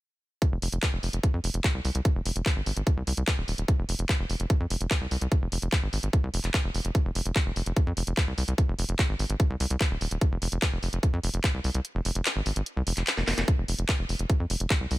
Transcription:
0.42 kick, closed hi-hat
0.52 analog synth bass F1
0.62 analog synth bass F1, open hi-hat
0.72 analog synth bass F1, closed hi-hat
0.83 kick, clap, closed hi-hat
0.93 analog synth bass F1
1.03 analog synth bass F1, open hi-hat
1.13 analog synth bass F1, closed hi-hat
1.23 kick, closed hi-hat
1.34 analog synth bass F2
1.44 analog synth bass F1, open hi-hat
1.54 analog synth bass F1, closed hi-hat
1.64 kick, clap, closed hi-hat
1.74 analog synth bass C2
1.85 analog synth bass C2, open hi-hat
1.95 analog synth bass C2, closed hi-hat
2.05 kick, closed hi-hat
2.15 analog synth bass F1
2.25 analog synth bass F1, open hi-hat
2.36 analog synth bass F1, closed hi-hat
2.46 kick, clap, closed hi-hat
2.56 analog synth bass G#1
2.66 analog synth bass G#1, open hi-hat
2.76 analog synth bass G#1, closed hi-hat
2.87 kick, closed hi-hat
2.97 analog synth bass C2
3.07 analog synth bass C2, open hi-hat
3.17 analog synth bass C2, closed hi-hat
3.27 kick, clap, closed hi-hat
3.38 analog synth bass D#1
3.48 analog synth bass D#1, open hi-hat
3.58 analog synth bass D#1, closed hi-hat
3.68 kick, closed hi-hat
3.79 analog synth bass F1
3.89 analog synth bass F1, open hi-hat
3.99 analog synth bass F1, closed hi-hat
4.09 kick, clap, closed hi-hat
4.19 analog synth bass F1
4.30 analog synth bass F1, open hi-hat
4.40 analog synth bass F1, closed hi-hat
4.50 kick, closed hi-hat
4.60 analog synth bass F2
4.70 analog synth bass F1, open hi-hat
4.81 analog synth bass F1, closed hi-hat
4.91 kick, clap, closed hi-hat
5.01 analog synth bass C2
5.11 analog synth bass C2, open hi-hat
5.21 analog synth bass C2, closed hi-hat
5.32 kick, closed hi-hat
5.42 analog synth bass F1
5.52 analog synth bass F1, open hi-hat
5.62 analog synth bass F1, closed hi-hat
5.72 kick, clap, closed hi-hat
5.83 analog synth bass G#1
5.93 analog synth bass G#1, open hi-hat
6.03 analog synth bass G#1, closed hi-hat
6.13 kick, closed hi-hat
6.23 analog synth bass C2
6.34 analog synth bass F1, open hi-hat
6.44 analog synth bass F1, clap, closed hi-hat
6.54 kick, clap, closed hi-hat
6.64 analog synth bass F1
6.74 analog synth bass F1, open hi-hat
6.85 analog synth bass F1, closed hi-hat
6.95 kick, closed hi-hat
7.05 analog synth bass F1
7.15 analog synth bass F1, open hi-hat
7.25 analog synth bass F1, closed hi-hat
7.36 kick, clap, closed hi-hat
7.46 analog synth bass F1
7.56 analog synth bass F1, open hi-hat
7.66 analog synth bass F1, closed hi-hat
7.76 kick, closed hi-hat
7.87 analog synth bass F2
7.97 analog synth bass F1, open hi-hat
8.07 analog synth bass F1, closed hi-hat
8.17 kick, clap, closed hi-hat
8.28 analog synth bass C2
8.38 analog synth bass C2, open hi-hat
8.48 analog synth bass C2, closed hi-hat
8.58 kick, closed hi-hat
8.68 analog synth bass F1
8.78 analog synth bass F1, open hi-hat
8.89 analog synth bass F1, closed hi-hat
8.99 kick, clap, closed hi-hat
9.09 analog synth bass G#1
9.19 analog synth bass G#1, open hi-hat
9.30 analog synth bass G#1, closed hi-hat
9.40 kick, closed hi-hat
9.50 analog synth bass C2
9.60 analog synth bass C2, open hi-hat
9.70 analog synth bass C2, closed hi-hat
9.81 kick, clap, closed hi-hat
9.91 analog synth bass D#1
10.01 analog synth bass D#1, open hi-hat
10.11 analog synth bass D#1, closed hi-hat
10.21 kick, closed hi-hat
10.32 analog synth bass F1
10.42 analog synth bass F1, open hi-hat
10.52 analog synth bass F1, closed hi-hat
10.62 kick, clap, closed hi-hat
10.72 analog synth bass F1
10.83 analog synth bass F1, open hi-hat
10.93 analog synth bass F1, closed hi-hat
11.03 kick, closed hi-hat
11.13 analog synth bass F2
11.23 analog synth bass F1, open hi-hat
11.34 analog synth bass F1, closed hi-hat
11.44 kick, clap, closed hi-hat
11.54 analog synth bass C2
11.64 analog synth bass C2, open hi-hat
11.74 analog synth bass C2, closed hi-hat
11.85 closed hi-hat
11.95 analog synth bass F1
12.05 analog synth bass F1, open hi-hat
12.15 analog synth bass F1, closed hi-hat
12.25 clap, closed hi-hat
12.36 analog synth bass G#1
12.46 analog synth bass G#1, open hi-hat
12.56 analog synth bass G#1, closed hi-hat
12.66 closed hi-hat
12.77 analog synth bass C2
12.87 analog synth bass F1, open hi-hat
12.97 analog synth bass F1, clap, closed hi-hat
13.07 clap, closed hi-hat
13.17 analog synth bass F1, snare
13.28 analog synth bass F1, snare, open hi-hat
13.38 analog synth bass F1, snare, closed hi-hat
13.48 kick, closed hi-hat
13.58 analog synth bass F1
13.68 analog synth bass F1, open hi-hat
13.79 analog synth bass F1, closed hi-hat
13.89 kick, clap, closed hi-hat
13.99 analog synth bass F1
14.09 analog synth bass F1, open hi-hat
14.19 analog synth bass F1, closed hi-hat
14.30 kick, closed hi-hat
14.40 analog synth bass F2
14.50 analog synth bass F1, open hi-hat
14.60 analog synth bass F1, closed hi-hat
14.70 kick, clap, closed hi-hat
14.81 analog synth bass C2
14.91 analog synth bass C2, open hi-hat

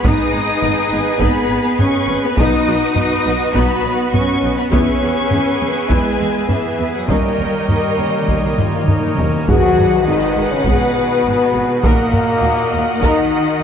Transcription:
0.04 double bass section G#1, pipe organ B3 G#4 B4 D#5, viola section B3 D#4, french horn section D#4, cello section D#4, violin section G#4 B4 D#6, taiko
0.33 double bass section G#1, viola section G#3 B3
0.62 double bass section G#1, viola section B3, taiko low-mid
0.92 double bass section G#1, viola section G#3 B3
1.20 double bass section G#1, viola section B3 D#4, french horn section B3, cello section B3, violin section B5, taiko
1.49 double bass section G#1, viola section G#3 B3
1.79 double bass section G#1, viola section B3, cello section C#4, french horn section C#4, violin section C#6, taiko low-mid
2.08 double bass section G#1, viola section G#3 B3
2.23 cello section B3, french horn section B3, violin section B5
2.37 double bass section B1, viola section B3 D#4, cello section D#4, french horn section D#4, violin section F#4 D#6, pipe organ F#4, taiko
2.67 double bass section B1, viola section F#3 B3
2.95 double bass section B1, viola section B3, taiko low-mid
3.25 double bass section B1, viola section F#3 B3
3.53 double bass section B1, viola section B3 D#4, french horn section B3, cello section B3, violin section B5, taiko
3.84 double bass section B1, viola section F#3 B3
4.12 double bass section B1, viola section B3, french horn section C#4, cello section C#4, violin section C#6, taiko low-mid
4.42 double bass section B1, viola section F#3 B3
4.58 french horn section B3, cello section B3, violin section B5
4.71 double bass section E2, viola section B3 E4, pipe organ B3 G#4 B4 E5, french horn section C#4, cello section C#4, violin section G#4 B4 C#6, taiko
5.01 double bass section E2, viola section B3
5.31 double bass section E2, viola section B3 C#4, taiko low-mid
5.61 double bass section E2, viola section B3
5.89 double bass section E2, french horn section G#3, cello section G#3, viola section B3 E4, violin section G#5, taiko
6.18 double bass section E2, viola section B3
6.47 double bass section E2, french horn section E3, cello section E3, viola section B3 C#4, violin section E5, taiko low-mid
6.78 double bass section E2, viola section B3
6.94 cello section F#3, french horn section F#3, violin section F#5
7.08 double bass section D#2, cello section G3, french horn section G3, pipe organ A#3 A#4 C#5 D#5, viola section C#4 D#4, violin section A#4 D#5 G5, taiko, reverse cymbal
7.16 timpani D#3
7.23 timpani D#3
7.31 timpani D#3
7.38 double bass section D#2, timpani D#3, viola section A#3 C#4
7.46 timpani D#3
7.54 timpani D#3
7.61 timpani D#3
7.68 double bass section D#2, timpani D#3, viola section D#4, taiko low-mid
7.76 timpani D#3
7.84 timpani D#3
7.92 timpani D#3
7.98 double bass section D#2, timpani D#3, viola section C#4
8.08 timpani D#3
8.15 timpani D#3
8.22 timpani D#3
8.28 double bass section D#2, viola section D#4, taiko
8.38 timpani D#3
8.46 timpani D#3
8.53 timpani D#3
8.58 double bass section D#2, timpani D#3, viola section F4, taiko low-mid
8.69 timpani D#3
8.76 timpani D#3
8.84 timpani D#3, viola section D#4
8.88 double bass section D#2, timpani D#3, taiko low-mid
8.99 timpani D#3
9.07 timpani D#3
9.15 double bass section D#2, timpani D#3, viola section C#4, taiko low
9.22 timpani D#3
9.30 timpani D#3
9.37 timpani D#3
9.47 double bass section G#1, cello section F#3, pipe organ D#4 F#4 G#4 D#5, french horn section F#4, viola section G#4 B4, violin section B4 F#5, flute F#5, taiko, tam-tam, sub drop
9.78 taiko low-mid
10.07 double bass section G#1, cello section D#3, french horn section D#4, viola section F#4, flute D#5, violin section D#5
10.36 double bass section G#1, viola section G#4
10.51 cello section C#3, french horn section C#4, flute C#5, violin section C#5
10.66 double bass section G#1, cello section B2, french horn section B3, viola section G#4, flute B4, violin section B4, taiko
11.24 double bass section G#1, viola section F#4
11.54 double bass section G#1, viola section G#4
11.83 double bass section D#2, cello section A#2, french horn section A#3, viola section A#4 D#5, pipe organ A#4, violin section A#4 F#5, flute A#4, taiko
12.13 taiko low-mid
12.43 double bass section D#2, viola section F#4
12.71 double bass section D#2, viola section A#4
13.02 double bass section D#2, cello section D#3, french horn section D#4, viola section A#4, flute D#5, violin section D#5, taiko

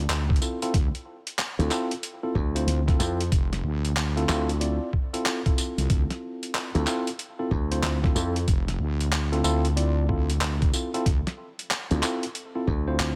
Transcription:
0.09 wobble bass D2, clap, closed hi-hat
0.30 kick
0.36 closed hi-hat
0.42 tine electric piano C4 E4 F4 A4, tambourine
0.62 tine electric piano C4 E4 F4 A4, closed hi-hat
0.74 wobble bass D2, kick, closed hi-hat
0.95 closed hi-hat
1.27 closed hi-hat
1.39 clap, closed hi-hat
1.59 slap bass D2, tine electric piano C4 E4 F4 A4, closed hi-hat
1.70 tine electric piano C4 E4 F4 A4, clap, tambourine
1.91 closed hi-hat
2.03 closed hi-hat
2.23 tine electric piano C4 E4 F4 A4
2.35 slap bass D2, kick
2.55 tine electric piano C4 E4 F4 C5, closed hi-hat
2.67 wobble bass D2, closed hi-hat
2.88 tine electric piano C4 E4 F4 A4, kick, snare, closed hi-hat
2.99 slap bass F2, tine electric piano C4 E4 F4 A4, tambourine
3.21 closed hi-hat
3.32 wobble bass F1, kick, closed hi-hat
3.53 snare, closed hi-hat
3.64 wobble bass D2
3.85 closed hi-hat
3.96 clap, closed hi-hat
4.17 tine electric piano C4 E4 F4 A4, closed hi-hat
4.28 slap bass D2, tine electric piano C4 E4 F4 A4, clap, tambourine
4.49 closed hi-hat
4.61 tine electric piano C4 E4 F4 D5, closed hi-hat
4.93 kick
5.14 tine electric piano C4 E4 F4 A4, closed hi-hat
5.26 clap, closed hi-hat
5.46 tine electric piano C4 E4 F4 A4, kick, closed hi-hat
5.58 tambourine
5.78 wobble bass C2, closed hi-hat
5.90 wobble bass D2, kick, closed hi-hat
6.10 snare, closed hi-hat
6.43 closed hi-hat
6.55 clap, closed hi-hat
6.75 slap bass D2, tine electric piano C4 E4 F4 A4, closed hi-hat
6.86 tine electric piano C4 E4 F4 A4, clap, tambourine
7.07 closed hi-hat
7.19 closed hi-hat
7.39 tine electric piano C4 E4 F4 A4
7.51 slap bass D2, kick
7.71 tine electric piano C4 E4 F4 C5, closed hi-hat
7.83 wobble bass D2, clap, closed hi-hat
8.04 tine electric piano C4 E4 F4 A4, kick, snare
8.15 slap bass F2, tine electric piano C4 E4 F4 A4, tambourine
8.36 closed hi-hat
8.48 wobble bass F1, kick, closed hi-hat
8.68 snare, closed hi-hat
8.80 wobble bass D2
9.00 closed hi-hat
9.12 clap, closed hi-hat
9.32 tine electric piano C4 E4 F4 A4, closed hi-hat
9.44 wobble bass D2, tine electric piano C4 E4 F4 A4, tambourine
9.65 closed hi-hat
9.76 tine electric piano C4 E4 F4 D5, closed hi-hat
10.09 tine electric piano C4 E4 F4 A4, kick
10.30 closed hi-hat
10.41 wobble bass D2, clap, closed hi-hat
10.62 kick, closed hi-hat
10.73 tine electric piano C4 E4 F4 A4, tambourine
10.94 tine electric piano C4 E4 F4 A4, closed hi-hat
11.06 wobble bass D2, kick, closed hi-hat
11.27 snare, closed hi-hat
11.59 closed hi-hat
11.71 clap, closed hi-hat
11.91 slap bass D2, tine electric piano C4 E4 F4 A4, closed hi-hat
12.02 tine electric piano C4 E4 F4 A4, clap, tambourine
12.23 closed hi-hat
12.35 closed hi-hat
12.55 tine electric piano C4 E4 F4 A4
12.68 slap bass D2, kick
12.88 tine electric piano C4 E4 F4 C5
12.99 wobble bass D2, clap, closed hi-hat

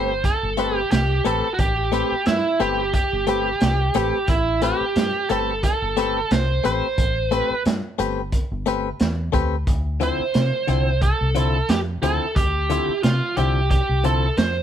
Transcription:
Already playing: fingered electric bass G1, clean electric guitar A3 C4 G4 B4, lead electric guitar C5
0.24 lead electric guitar A4, kick, closed hi-hat
0.43 fingered electric bass G1
0.57 clean electric guitar A3 C4 G4 B4, closed hi-hat
0.77 lead electric guitar G4
0.91 fingered electric bass C2, lead electric guitar G4, snare, closed hi-hat
1.25 fingered electric bass A1, clean electric guitar A3 C4 G4 B4, lead electric guitar A4, closed hi-hat
1.54 lead electric guitar F#4
1.59 fingered electric bass A1, lead electric guitar G4, kick, closed hi-hat
1.92 clean electric guitar A3 C4 G4 B4, closed hi-hat
2.12 muted fingered electric bass stroke
2.26 fingered electric bass G2, lead electric guitar E4, snare, closed hi-hat
2.60 fingered electric bass G1, clean electric guitar A3 C4 G4 B4, lead electric guitar G4, closed hi-hat
2.94 lead electric guitar G4, kick, closed hi-hat
3.13 fingered electric bass G1
3.27 clean electric guitar A3 C4 G4 B4, closed hi-hat
3.61 fingered electric bass C2, snare, closed hi-hat
3.94 fingered electric bass A1, clean electric guitar A3 C4 G4 B4, closed hi-hat
4.28 fingered electric bass A1, lead electric guitar E4, kick, closed hi-hat
4.62 clean electric guitar A3 C4 G4 B4, lead electric guitar G4, closed hi-hat
4.81 muted fingered electric bass stroke
4.96 fingered electric bass G2, snare, closed hi-hat
5.29 fingered electric bass G1, clean electric guitar A3 C4 G4 B4, lead electric guitar A4, closed hi-hat
5.63 lead electric guitar A4, kick, closed hi-hat
5.82 fingered electric bass G1
5.97 clean electric guitar A3 C4 G4 B4, closed hi-hat
6.31 fingered electric bass C2, lead electric guitar C5, snare, closed hi-hat
6.64 fingered electric bass A1, clean electric guitar A3 C4 G4 B4, lead electric guitar C5, closed hi-hat
6.98 fingered electric bass A1, kick, closed hi-hat
7.30 clean electric guitar A3 C4 G4 B4, lead electric guitar B4, closed hi-hat
7.51 muted fingered electric bass stroke
7.66 fingered electric bass G2, snare, closed hi-hat
7.99 fingered electric bass G1, clean electric guitar A3 C4 G4 B4, closed hi-hat
8.32 kick, closed hi-hat
8.51 fingered electric bass G1
8.66 clean electric guitar A3 C4 G4 B4, closed hi-hat
9.00 fingered electric bass E2, snare, closed hi-hat
9.32 fingered electric bass D2, clean electric guitar A3 C4 G4 B4, kick, closed hi-hat
9.67 fingered electric bass D2, kick, closed hi-hat
10.00 clean electric guitar D3 F3 C4 E4, lead electric guitar C5, closed hi-hat
10.20 muted fingered electric bass stroke
10.34 fingered electric bass C3, snare, closed hi-hat
10.68 fingered electric bass C2, clean electric guitar D3 F3 C4 E4, closed hi-hat
11.02 lead electric guitar A4, kick, closed hi-hat
11.21 fingered electric bass C2
11.35 clean electric guitar D3 F3 C4 E4, closed hi-hat
11.69 fingered electric bass F2, lead electric guitar G4, snare, closed hi-hat
12.02 fingered electric bass D2, clean electric guitar D3 F3 C4 E4, lead electric guitar A4, closed hi-hat
12.36 fingered electric bass D2, lead electric guitar G4, kick, closed hi-hat
12.70 clean electric guitar D3 F3 C4 E4, closed hi-hat
12.89 muted fingered electric bass stroke
13.03 fingered electric bass C3, lead electric guitar F4, snare, closed hi-hat
13.37 fingered electric bass C2, clean electric guitar D3 F3 C4 E4, lead electric guitar G4, closed hi-hat
13.71 lead electric guitar G4, kick, closed hi-hat
13.89 fingered electric bass C2
14.04 clean electric guitar D3 F3 C4 E4, lead electric guitar A4, closed hi-hat
14.37 fingered electric bass F2, lead electric guitar C5, snare, closed hi-hat

